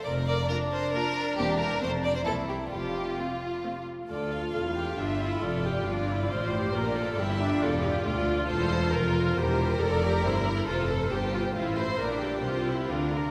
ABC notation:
X:1
M:3/4
L:1/16
Q:1/4=136
K:Cmix
V:1 name="Violin section"
d2 d2 B2 c2 B4 | G2 B2 c2 d c A2 G2 | G4 F6 z2 | [K:Bblyd] d2 f6 e4 |
d4 d8 | d4 e4 d4 | d4 A4 B4 | [K:F] c4 d4 c2 B2 |
c8 c4 | d4 c4 B4 |]
V:2 name="Violin section"
B4 D8- | D8 E4 | F8- F2 z2 | [K:Bblyd] A4 A2 G2 F4 |
A2 G2 F4 c4 | B2 A2 G4 F4- | F4 c4 B4 | [K:F] B12 |
A4 G4 F2 c2 | B2 G6 F2 B2 |]
V:3 name="Viola section"
z4 [B,F]4 [B,F]4 | [B,C]4 [A,C]4 [B,E]4 | z4 [A,C]4 [A,C]4 | [K:Bblyd] F8 D2 E2 |
F4 D2 E2 F2 G2 | F4 E2 D2 A2 G2 | F8 F4 | [K:F] G4 A2 G2 E4 |
F2 A2 G2 F2 E4 | D4 F2 E2 D4 |]
V:4 name="Cello section" clef=bass
F,,4 z8 | E,,4 F,,4 C,,4 | F,,4 z8 | [K:Bblyd] D,,4 E,,4 G,,4 |
F,,4 G,,4 A,,4 | B,,4 G,,4 E,,4 | D,,4 E,,4 F,,4 | [K:F] E,,4 F,,4 G,,4 |
F,,4 G,,4 A,,4 | B,,4 C,4 D,4 |]
V:5 name="Double bass section" clef=bass
F,,,4 z8 | E,,,4 F,,,4 C,,4 | F,,,4 z8 | [K:Bblyd] D,,4 E,,,4 G,,,4 |
F,,,4 G,,,4 A,,,4 | B,,,4 G,,,4 E,,,4 | D,,4 E,,,4 F,,,4 | [K:F] E,,,4 F,,,4 G,,,4 |
F,,,4 G,,,4 A,,,4 | B,,,4 C,,4 D,,4 |]